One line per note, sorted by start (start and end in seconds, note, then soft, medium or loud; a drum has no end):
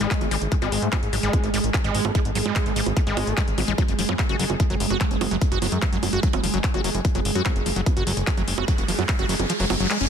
0.00 0.07 G#1 medium
0.00 10.09 G#3 medium
0.00 0.23 G#3 loud
0.00 10.09 G#4 medium
0.00 closed hi-hat medium
0.11 kick loud
0.11 clap loud
0.11 closed hi-hat loud
0.21 0.27 G#1 medium
0.21 0.28 A3 medium
0.21 closed hi-hat medium
0.21 high bongo soft
0.31 0.37 G#1 loud
0.31 0.36 G#3 loud
0.31 open hi-hat loud
0.42 0.47 G#1 medium
0.42 closed hi-hat medium
0.52 0.55 F#3 medium
0.52 kick loud
0.52 closed hi-hat medium
0.62 0.68 G#1 medium
0.62 0.84 G#3 loud
0.62 closed hi-hat medium
0.62 high bongo soft
0.72 0.78 G#1 loud
0.72 open hi-hat loud
0.82 0.88 G#2 loud
0.82 0.89 A3 medium
0.82 closed hi-hat soft
0.93 0.97 G#3 loud
0.93 kick loud
0.93 clap loud
0.93 closed hi-hat medium
0.93 high bongo medium
1.03 1.09 G#1 medium
1.03 closed hi-hat soft
1.13 1.19 G#1 loud
1.13 1.16 F#3 medium
1.13 open hi-hat loud
1.23 1.29 G#1 medium
1.23 1.45 G#3 loud
1.23 closed hi-hat medium
1.33 kick loud
1.33 closed hi-hat medium
1.33 high bongo soft
1.44 1.49 G#1 medium
1.44 1.51 A3 medium
1.44 closed hi-hat soft
1.54 1.60 G#1 loud
1.54 1.58 G#3 loud
1.54 open hi-hat loud
1.64 1.70 G#1 medium
1.64 closed hi-hat soft
1.74 1.77 F#3 medium
1.74 kick loud
1.74 clap loud
1.74 closed hi-hat medium
1.74 high bongo soft
1.84 1.90 G#1 medium
1.84 2.06 G#3 loud
1.84 closed hi-hat medium
1.95 2.00 G#1 loud
1.95 open hi-hat loud
2.05 2.11 G#1 medium
2.05 2.12 A3 medium
2.05 closed hi-hat medium
2.05 high bongo medium
2.15 2.20 G#3 loud
2.15 kick loud
2.15 closed hi-hat medium
2.25 2.31 G#1 medium
2.25 closed hi-hat medium
2.35 2.41 G#1 loud
2.35 2.38 F#3 medium
2.35 open hi-hat loud
2.46 2.51 G#2 medium
2.46 2.67 G#3 loud
2.46 closed hi-hat medium
2.46 high bongo soft
2.56 kick loud
2.56 clap loud
2.56 closed hi-hat medium
2.66 2.72 G#1 medium
2.66 2.73 A3 medium
2.66 closed hi-hat soft
2.76 2.82 G#1 loud
2.76 2.81 G#3 loud
2.76 open hi-hat loud
2.86 2.92 G#1 medium
2.86 closed hi-hat soft
2.86 high bongo soft
2.97 2.99 F#3 medium
2.97 kick loud
2.97 closed hi-hat medium
3.07 3.13 G#1 medium
3.07 3.29 G#3 loud
3.07 closed hi-hat soft
3.17 3.23 G#1 loud
3.17 open hi-hat loud
3.17 high bongo medium
3.27 3.33 G#1 medium
3.27 3.34 A3 medium
3.27 closed hi-hat soft
3.37 3.42 G#3 loud
3.37 kick loud
3.37 clap loud
3.37 closed hi-hat medium
3.48 3.54 G#1 medium
3.48 closed hi-hat soft
3.58 3.64 G#1 loud
3.58 3.61 F#3 medium
3.58 open hi-hat loud
3.58 high bongo soft
3.68 3.74 A1 medium
3.68 3.73 G#3 loud
3.68 closed hi-hat soft
3.78 3.83 F#3 loud
3.78 kick loud
3.78 closed hi-hat medium
3.78 high bongo soft
3.88 3.94 F#1 medium
3.88 closed hi-hat medium
3.99 4.05 F#1 loud
3.99 4.01 F3 medium
3.99 open hi-hat loud
4.09 4.15 F#2 loud
4.09 4.14 F#3 loud
4.09 high bongo medium
4.19 kick loud
4.19 clap loud
4.19 closed hi-hat medium
4.29 4.35 F#1 medium
4.29 4.36 F#4 medium
4.29 closed hi-hat soft
4.39 4.45 F#1 loud
4.39 4.44 F#3 loud
4.39 open hi-hat loud
4.50 4.56 F#1 medium
4.50 closed hi-hat soft
4.50 high bongo soft
4.60 4.63 F3 medium
4.60 kick loud
4.60 closed hi-hat medium
4.70 4.76 F#1 medium
4.70 4.75 F#3 loud
4.70 closed hi-hat soft
4.80 4.86 F#1 loud
4.80 open hi-hat loud
4.90 4.96 F#1 medium
4.90 4.98 F#4 medium
4.90 closed hi-hat soft
4.90 high bongo soft
5.01 5.05 F#3 loud
5.01 kick loud
5.01 clap loud
5.01 closed hi-hat medium
5.11 5.17 F#1 medium
5.11 closed hi-hat medium
5.21 5.27 F#1 loud
5.21 5.24 F3 medium
5.21 open hi-hat loud
5.21 high bongo medium
5.31 5.37 F#1 medium
5.31 5.36 F#3 loud
5.31 closed hi-hat medium
5.42 kick loud
5.42 closed hi-hat medium
5.52 5.58 F#1 medium
5.52 5.59 F#4 medium
5.52 closed hi-hat medium
5.62 5.68 F#1 loud
5.62 5.67 F#3 loud
5.62 open hi-hat loud
5.62 high bongo soft
5.72 5.78 F#2 loud
5.72 closed hi-hat medium
5.82 5.85 F3 medium
5.82 kick loud
5.82 clap loud
5.82 closed hi-hat medium
5.93 5.98 F#1 medium
5.93 5.97 F#3 loud
5.93 closed hi-hat medium
6.03 6.09 F#1 loud
6.03 open hi-hat loud
6.03 high bongo soft
6.13 6.19 F#1 medium
6.13 6.20 F#4 medium
6.13 closed hi-hat medium
6.23 6.28 F#3 loud
6.23 kick loud
6.23 closed hi-hat medium
6.33 6.39 F#1 medium
6.33 closed hi-hat medium
6.33 high bongo medium
6.44 6.49 F#1 loud
6.44 6.46 F3 medium
6.44 open hi-hat loud
6.54 6.60 F#1 medium
6.54 6.58 F#3 loud
6.54 closed hi-hat medium
6.64 kick loud
6.64 clap loud
6.64 closed hi-hat medium
6.74 6.80 F#1 medium
6.74 6.81 F#4 medium
6.74 closed hi-hat medium
6.74 high bongo soft
6.84 6.90 F#1 loud
6.84 6.89 F#3 loud
6.84 open hi-hat loud
6.95 7.00 F#1 medium
6.95 closed hi-hat medium
7.05 7.08 F3 medium
7.05 kick loud
7.05 closed hi-hat loud
7.05 riser medium
7.15 7.21 F#1 medium
7.15 7.20 F#3 loud
7.15 closed hi-hat medium
7.15 high bongo soft
7.25 7.31 F#1 loud
7.25 open hi-hat loud
7.35 7.41 F#2 loud
7.35 7.42 F#4 medium
7.35 closed hi-hat medium
7.46 7.50 F#3 loud
7.46 kick loud
7.46 clap loud
7.46 closed hi-hat loud
7.46 high bongo medium
7.56 7.62 F#1 medium
7.56 closed hi-hat medium
7.66 7.72 F#1 loud
7.66 7.69 F3 medium
7.66 open hi-hat loud
7.76 7.82 F#1 medium
7.76 7.81 F#3 loud
7.76 closed hi-hat medium
7.86 kick loud
7.86 closed hi-hat medium
7.86 high bongo soft
7.97 8.02 F#1 medium
7.97 8.04 F#4 medium
7.97 closed hi-hat medium
8.07 8.13 F#1 loud
8.07 8.12 F#3 loud
8.07 open hi-hat loud
8.17 8.23 F#1 medium
8.17 closed hi-hat medium
8.27 8.30 F3 medium
8.27 kick loud
8.27 clap loud
8.27 closed hi-hat loud
8.27 high bongo soft
8.37 8.43 F#1 medium
8.37 8.42 F#3 loud
8.37 closed hi-hat medium
8.48 8.53 F#1 loud
8.48 open hi-hat loud
8.58 8.64 F#1 medium
8.58 8.65 F#4 medium
8.58 high bongo medium
8.68 8.73 F#3 loud
8.68 kick loud
8.68 closed hi-hat loud
8.78 8.84 F#1 medium
8.78 closed hi-hat medium
8.88 8.94 F#1 loud
8.88 8.91 F3 medium
8.88 open hi-hat loud
8.99 9.04 F#2 loud
8.99 9.03 F#3 loud
8.99 closed hi-hat medium
8.99 high bongo soft
9.09 kick loud
9.09 clap loud
9.09 closed hi-hat loud
9.19 9.25 F#1 medium
9.19 9.26 F#4 medium
9.19 closed hi-hat medium
9.29 9.35 F#1 loud
9.29 9.34 F#3 loud
9.29 open hi-hat loud
9.39 9.45 F#1 medium
9.39 closed hi-hat medium
9.39 high bongo soft
9.50 9.52 F3 medium
9.50 closed hi-hat loud
9.60 9.66 F#1 medium
9.60 9.65 F#3 loud
9.60 open hi-hat medium
9.70 9.76 F#1 loud
9.70 9.75 F#3 medium
9.70 open hi-hat loud
9.70 high bongo medium
9.80 9.86 F#1 medium
9.80 9.87 F#3 loud
9.80 closed hi-hat medium
9.90 9.98 G#3 medium
9.90 clap loud
9.90 closed hi-hat loud
10.01 10.07 F#1 medium
10.01 10.05 C#4 loud
10.01 closed hi-hat medium